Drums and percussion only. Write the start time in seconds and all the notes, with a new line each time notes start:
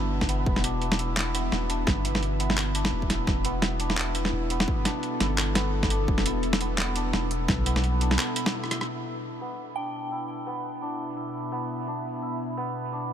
0.21 kick, snare
0.29 closed hi-hat
0.46 kick
0.56 snare
0.64 closed hi-hat
0.82 closed hi-hat
0.92 snare
0.99 closed hi-hat
1.17 clap, snare
1.35 closed hi-hat
1.52 snare
1.70 closed hi-hat
1.87 kick, snare
2.05 closed hi-hat
2.15 snare
2.23 closed hi-hat
2.40 closed hi-hat
2.50 snare
2.57 clap
2.75 closed hi-hat
2.85 snare
3.02 kick
3.10 snare, closed hi-hat
3.27 kick, snare
3.45 closed hi-hat
3.62 snare, closed hi-hat
3.80 closed hi-hat
3.90 snare
3.97 clap
4.15 closed hi-hat
4.25 snare
4.50 closed hi-hat
4.60 snare
4.68 kick
4.85 snare, closed hi-hat
5.03 closed hi-hat
5.20 snare, closed hi-hat
5.38 clap
5.55 snare, closed hi-hat
5.83 kick, snare
5.90 closed hi-hat
6.08 kick
6.18 snare
6.26 closed hi-hat
6.43 closed hi-hat
6.53 snare
6.61 closed hi-hat
6.78 clap, snare
6.96 closed hi-hat
7.13 snare
7.31 closed hi-hat
7.48 kick, snare
7.66 closed hi-hat
7.76 snare
7.84 closed hi-hat
8.01 closed hi-hat
8.11 snare
8.19 clap
8.36 closed hi-hat
8.46 snare
8.64 cross-stick
8.71 cross-stick, closed hi-hat
8.81 cross-stick
9.06 closed hi-hat
9.41 closed hi-hat
9.76 closed hi-hat
10.11 closed hi-hat
10.46 closed hi-hat
10.64 closed hi-hat
10.82 closed hi-hat
11.17 closed hi-hat
11.52 closed hi-hat
11.87 closed hi-hat
12.04 closed hi-hat
12.22 closed hi-hat
12.57 closed hi-hat
12.92 closed hi-hat